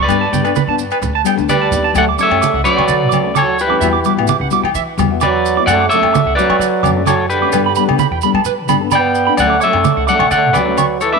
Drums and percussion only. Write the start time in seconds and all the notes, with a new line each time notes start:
0.09 muted conga, low agogo, maracas
0.33 muted conga, high conga, maracas
0.45 low agogo, maracas
0.56 high conga, maracas
0.78 muted conga, maracas
0.91 low agogo, maracas
1.02 muted conga, low conga, maracas
1.25 low agogo, maracas
1.38 maracas
1.49 high conga, low agogo, maracas
1.72 low conga, maracas
1.95 muted conga, low agogo, maracas
2.18 muted conga, maracas
2.31 low agogo
2.42 high conga, maracas
2.65 muted conga, maracas
2.79 low agogo
2.88 muted conga, maracas
3.12 high conga, low agogo, maracas
3.36 high conga, low agogo, maracas
3.59 maracas
3.81 muted conga, low agogo, maracas
4.04 muted conga, maracas
4.19 low agogo
4.27 high conga, maracas
4.51 muted conga, maracas
4.65 low agogo
4.75 muted conga, maracas
4.98 high conga, low agogo, maracas
5.21 high conga, low agogo, maracas
5.46 maracas
5.68 muted conga, low agogo, maracas
5.91 muted conga, maracas
6.03 low agogo
6.15 high conga, maracas
6.39 muted conga, maracas
6.50 low agogo
6.61 muted conga, maracas
6.84 high conga, low agogo, maracas
7.06 high conga, low agogo, maracas
7.30 maracas
7.52 muted conga, low agogo, maracas
7.75 muted conga, maracas
7.89 low agogo
7.99 high conga, maracas
8.21 muted conga, maracas
8.35 low agogo
8.45 muted conga, maracas
8.68 high conga, low agogo, maracas
8.91 high conga, low agogo, maracas
9.15 maracas
9.37 muted conga, low agogo, maracas
9.61 muted conga, maracas
9.73 low agogo
9.84 high conga, maracas
10.08 muted conga, maracas
10.20 low agogo
10.31 muted conga, maracas
10.54 high conga, low agogo, maracas
10.78 high conga, low agogo, maracas
11.01 maracas